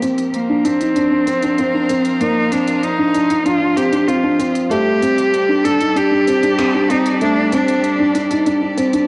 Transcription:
Already playing: string quartet F3 G4
0.02 felt piano C4, closed hi-hat
0.18 string quartet A#4, closed hi-hat
0.32 cello A#3, string quartet F4, closed hi-hat
0.49 felt piano D4
0.65 cello C4, felt piano D4, closed hi-hat
0.81 felt piano D#4, closed hi-hat
0.96 felt piano D4, closed hi-hat
1.12 felt piano D4
1.27 felt piano C4, closed hi-hat
1.34 string quartet F5
1.43 felt piano D4, closed hi-hat
1.58 felt piano C4, closed hi-hat
1.74 felt piano D4
1.90 felt piano C4, closed hi-hat
2.05 closed hi-hat
2.21 felt piano A#3, cello D#4, closed hi-hat
2.52 felt piano C4, cello D4, closed hi-hat
2.68 closed hi-hat
2.83 cello D#4, closed hi-hat
2.99 felt piano D4
3.15 felt piano D4, closed hi-hat
3.30 felt piano D#4, closed hi-hat
3.46 felt piano D4, cello F4, closed hi-hat
3.61 felt piano D4
3.77 felt piano C4, cello G4, closed hi-hat
3.92 felt piano D4, closed hi-hat
4.08 felt piano C4, cello F4, closed hi-hat
4.24 felt piano D4
4.39 felt piano C4, closed hi-hat
4.55 closed hi-hat
4.70 string quartet G3, felt piano A3, cello G4, closed hi-hat
4.91 string quartet G4
5.00 felt piano C4, string quartet D5, closed hi-hat
5.16 string quartet A4, closed hi-hat
5.34 closed hi-hat
5.49 felt piano D4
5.64 felt piano D4, cello A4, closed hi-hat
5.81 closed hi-hat
5.96 felt piano D4, cello G4, closed hi-hat
6.12 felt piano D4
6.27 felt piano C4, closed hi-hat
6.43 felt piano D4, closed hi-hat
6.59 felt piano C4, finger snap, closed hi-hat
6.74 felt piano D4
6.90 felt piano C4, cello D#4, closed hi-hat
7.06 closed hi-hat
7.21 felt piano A3, cello D4, closed hi-hat
7.52 felt piano C4, cello D4, closed hi-hat
7.68 closed hi-hat
7.84 closed hi-hat
8.00 felt piano D4
8.15 felt piano D4, closed hi-hat
8.31 felt piano D#4, closed hi-hat
8.46 felt piano D4, closed hi-hat
8.62 felt piano D4
8.77 felt piano C4, closed hi-hat
8.93 felt piano D4, closed hi-hat

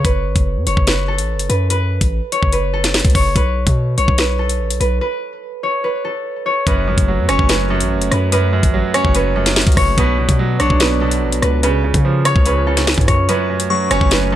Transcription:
Already playing: harp A4 C#5
0.05 808-style bass F#1, harp B4, kick, closed hi-hat
0.25 808-style bass G#1
0.36 808-style bass F#1, kick, closed hi-hat
0.56 808-style bass F#2
0.67 808-style bass F#1, harp C#5, closed hi-hat
0.77 808-style bass F#1, kick
0.87 harp B4, snare, closed hi-hat
1.08 harp A4
1.18 808-style bass A1, closed hi-hat
1.34 808-style bass F#1
1.39 closed hi-hat
1.49 808-style bass F#2, harp B4, closed hi-hat
1.70 harp B4, closed hi-hat
2.01 808-style bass A1, kick, closed hi-hat
2.32 harp C#5, closed hi-hat
2.43 808-style bass F#1, kick
2.53 harp B4, closed hi-hat
2.73 harp A4
2.84 snare, closed hi-hat
2.94 snare, closed hi-hat
2.99 closed hi-hat
3.05 808-style bass C#2, kick, closed hi-hat
3.10 closed hi-hat
3.15 808-style bass F#1, harp C#5, kick, open hi-hat
3.35 808-style bass B1, harp B4, kick, closed hi-hat
3.67 808-style bass B2, kick, closed hi-hat
3.98 808-style bass B1, harp C#5, closed hi-hat
4.08 808-style bass B1, kick
4.18 harp B4, snare, closed hi-hat
4.39 harp A4
4.49 closed hi-hat
4.60 808-style bass A1
4.70 808-style bass B1, closed hi-hat
4.80 808-style bass B1, harp B4, closed hi-hat
5.01 harp B4
5.63 harp C#5
5.84 harp B4
6.05 harp A4
6.46 harp C#5
6.67 808-style bass F#1, grand piano F#2, glass harmonica A3 C#4 F#4 C#5, harp B4, kick, closed hi-hat
6.87 808-style bass G#1, grand piano F#2
6.98 808-style bass F#1, kick, closed hi-hat
7.08 grand piano F#3
7.18 808-style bass F#2
7.29 808-style bass F#1, grand piano C#4, harp C#5, cross-stick, closed hi-hat
7.39 808-style bass F#1, kick
7.49 grand piano F#2, harp B4, snare, closed hi-hat
7.70 grand piano F#2, harp A4
7.80 808-style bass A1, closed hi-hat
7.96 808-style bass F#1
8.02 closed hi-hat
8.11 808-style bass F#2, harp B4, cross-stick, closed hi-hat
8.32 grand piano F#2, harp B4, closed hi-hat
8.53 grand piano F#2
8.63 808-style bass A1, kick, closed hi-hat
8.74 grand piano F#3
8.94 grand piano C#4, harp C#5, cross-stick, closed hi-hat
9.05 808-style bass F#1, kick
9.15 grand piano F#2, harp B4, closed hi-hat
9.36 grand piano F#2, harp A4
9.46 snare, closed hi-hat
9.56 snare, closed hi-hat
9.61 closed hi-hat
9.67 808-style bass C#2, kick, closed hi-hat
9.72 closed hi-hat
9.77 808-style bass F#1, harp C#5, kick, cross-stick, open hi-hat
9.98 808-style bass B1, grand piano B2, glass harmonica B3 D4 D5, harp B4, kick, closed hi-hat
10.18 grand piano B2
10.29 808-style bass B2, kick, closed hi-hat
10.39 grand piano F#3
10.60 808-style bass B1, grand piano D4, harp C#5, cross-stick, closed hi-hat
10.70 808-style bass B1, kick
10.80 grand piano B2, harp B4, snare, closed hi-hat
11.01 grand piano B2, harp A4
11.11 closed hi-hat
11.22 808-style bass A1
11.32 808-style bass B1, closed hi-hat
11.42 808-style bass C#2, harp B4, cross-stick, closed hi-hat
11.63 grand piano C#3, glass harmonica C#4 F4 C#5, harp B4, closed hi-hat
11.84 grand piano C#3
11.94 808-style bass C#3, kick, closed hi-hat
12.05 grand piano F3
12.25 harp C#5, grand piano C#5, cross-stick, closed hi-hat
12.36 808-style bass C#2, kick
12.46 grand piano C#3, harp B4, closed hi-hat
12.67 grand piano C#3, harp A4
12.77 snare, closed hi-hat
12.87 snare, closed hi-hat
12.94 808-style bass G#2, kick, closed hi-hat
13.01 closed hi-hat
13.08 808-style bass F#2, harp C#5, kick, cross-stick, closed hi-hat
13.29 grand piano F#2, glass harmonica A3 F#4, harp B4, closed hi-hat
13.49 grand piano F#2
13.60 closed hi-hat
13.70 grand piano F#3, synth bell C#6
13.91 808-style bass F#1, grand piano C#4, harp C#5, cross-stick, closed hi-hat
14.01 808-style bass F#1, kick
14.11 grand piano F#2, harp B4, snare, closed hi-hat
14.32 grand piano F#2, harp A4

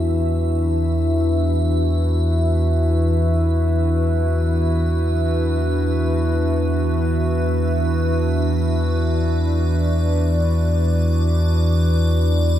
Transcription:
Already playing: synth drone E2 E3, analog synth pad D4 E4 F#4 B4, ambient pad E5
8.61 ambient pad D5

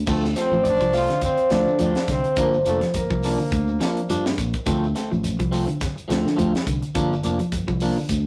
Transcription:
0.07 fingered electric bass D2, clean electric guitar D3 F3 A3 C4, trumpet A3, harp A4, kick, crash, shekere
0.24 snare, shekere
0.35 clean electric guitar F3 A3 C4, harp C5, snare, closed hi-hat, shekere
0.40 trumpet C4
0.52 fingered electric bass A1, clean electric guitar F3, muted clean electric guitar stroke, shekere
0.63 harp D5, muted clean electric guitar stroke, closed hi-hat, shekere
0.69 trumpet D4
0.80 fingered electric bass C2, clean electric guitar F3, muted clean electric guitar stroke, kick, closed hi-hat, shekere
0.93 clean electric guitar F3 A3 C4, harp F5, open hi-hat, shekere
0.97 trumpet F4
1.08 clean electric guitar D3, muted clean electric guitar stroke, snare, closed hi-hat, shekere
1.21 trumpet C4, harp C5, kick, closed hi-hat, shekere
1.38 muted clean electric guitar stroke, closed hi-hat, shekere
1.50 fingered electric bass D2, clean electric guitar F3 A3 C4, trumpet D4, harp D5, snare, closed hi-hat, shekere
1.67 fingered electric bass D3, shekere
1.79 fingered electric bass D2, clean electric guitar F3 A3 C4, harp D5, closed hi-hat, shekere
1.84 trumpet D4
1.95 muted clean electric guitar stroke, snare, closed hi-hat, shekere
2.08 fingered electric bass C2, clean electric guitar D3, trumpet C4, harp C5, muted clean electric guitar stroke, kick, snare, closed hi-hat, shekere
2.24 muted clean electric guitar stroke, closed hi-hat, shekere
2.36 fingered electric bass G1, clean electric guitar D3 F3 A#3 D4, harp A#4, kick, closed hi-hat, shekere
2.40 trumpet A#3
2.53 shekere
2.65 fingered electric bass F1, clean electric guitar F3 A#3 D4, trumpet A3, closed hi-hat, shekere
2.70 harp A4
2.81 clean electric guitar F3, muted clean electric guitar stroke, snare, closed hi-hat, shekere
2.94 fingered electric bass G1, harp A#4, muted clean electric guitar stroke, kick, closed hi-hat, shekere
2.98 trumpet A#3
3.10 fingered electric bass C2, clean electric guitar F3, muted clean electric guitar stroke, kick, shekere
3.23 clean electric guitar F3 A#3 D4, snare, open hi-hat, shekere
3.39 clean electric guitar D3, muted clean electric guitar stroke, shekere
3.51 fingered electric bass D2, kick, closed hi-hat, shekere
3.67 muted clean electric guitar stroke, shekere
3.80 clean electric guitar F3 A#3 D4, snare, closed hi-hat, shekere
3.97 closed hi-hat, shekere
4.09 fingered electric bass G2, clean electric guitar F3 D4, closed hi-hat, shekere
4.26 muted clean electric guitar stroke, snare, shekere
4.38 fingered electric bass A#1, muted clean electric guitar stroke, kick, closed hi-hat, shekere
4.54 muted clean electric guitar stroke, kick, closed hi-hat, shekere
4.66 fingered electric bass D2, clean electric guitar D3 F3 A3 C4, kick, closed hi-hat, shekere
4.83 shekere
4.95 clean electric guitar A3 C4, muted clean electric guitar stroke, snare, closed hi-hat, shekere
5.11 fingered electric bass A1, clean electric guitar F3, muted clean electric guitar stroke, shekere
5.24 muted clean electric guitar stroke, closed hi-hat, shekere
5.39 fingered electric bass C2, clean electric guitar F3, muted clean electric guitar stroke, kick, closed hi-hat, shekere
5.51 clean electric guitar F3 A3 C4, open hi-hat, shekere
5.67 clean electric guitar D3, muted clean electric guitar stroke, closed hi-hat, shekere
5.81 kick, snare, closed hi-hat, shekere
5.96 muted clean electric guitar stroke, closed hi-hat, shekere
6.08 fingered electric bass D2, clean electric guitar F3 A3 C4, snare, closed hi-hat, shekere
6.26 fingered electric bass D3, snare, shekere
6.36 fingered electric bass D2, clean electric guitar F3 A3 C4, closed hi-hat, shekere
6.53 muted clean electric guitar stroke, snare, closed hi-hat, shekere
6.66 fingered electric bass C2, clean electric guitar D3, muted clean electric guitar stroke, kick, closed hi-hat, shekere
6.82 muted clean electric guitar stroke, closed hi-hat, shekere
6.95 fingered electric bass G1, clean electric guitar D3 F3 A#3 D4, kick, closed hi-hat, shekere
7.12 shekere
7.23 fingered electric bass F1, clean electric guitar F3 A#3 D4, closed hi-hat, shekere
7.39 clean electric guitar F3, muted clean electric guitar stroke, closed hi-hat, shekere
7.52 fingered electric bass G1, muted clean electric guitar stroke, kick, closed hi-hat, shekere
7.68 fingered electric bass C2, clean electric guitar F3, muted clean electric guitar stroke, kick, shekere
7.80 clean electric guitar F3 A#3 D4, open hi-hat, shekere
7.97 clean electric guitar D3, muted clean electric guitar stroke, shekere
8.09 fingered electric bass D2, kick, closed hi-hat, shekere

